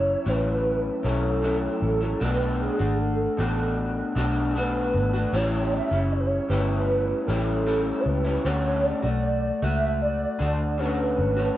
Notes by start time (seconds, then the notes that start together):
Already playing: F#1 F#3 C#4 E4 C#5
0.25 A1 A2 F#3 C#4 E4 B4
1.03 B1 A2 F#3 C#4 E4 A4
1.42 A2 F#3 C#4 E4
1.82 A1 A4
2.01 F#3 C#4 E4
2.20 B1 B2 A3 D4 F#4 B4
2.61 G#4
2.79 G#1 A3 D4 F#4
3.02 A4
3.37 A1 B2 A3 D4 F#4
4.15 B1 B2 A3 D4 F#4
4.55 B2 A3 D4 F#4 B4
4.94 G#1
5.13 A3 D4 F#4
5.33 A1 A2 G3 C#4 E4 C#5
5.73 E5
5.91 F#1 G3 C#4 E4
6.12 C#5
6.19 B4
6.26 C#5
6.49 G1 A2 G3 C#4 E4 B4
7.27 A1 A2 G3 C#4 E4 A4
7.66 A2 G3 C#4 E4
8.00 C#5
8.06 C#2 B4
8.24 G3 C#4 E4
8.45 D2 D3 A3 C#4 F#4 C#5
8.84 D5
9.02 B1 A3 F#4
9.62 C#2 A3 F#4 E5
10.02 D5
10.39 D2 D3 A3 F#4
10.78 D3 A3 C#4 F#4 B4
11.18 G#1
11.37 A3 C#4 F#4